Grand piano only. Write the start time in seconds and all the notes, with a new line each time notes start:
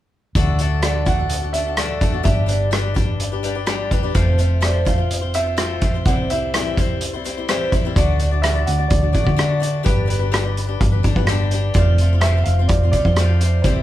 0.83 D5
1.07 F#5
1.53 E5
2.24 E5
2.48 D5
4.63 D5
4.87 F5
5.35 E5
6.06 F#5
6.30 E5
7.95 D5
8.42 E5
8.66 F#5
8.88 D5
9.13 D5
9.84 B4
10.09 B4
11.74 D5
12.21 E5
12.44 F5
12.67 D5
12.91 D5
13.62 C5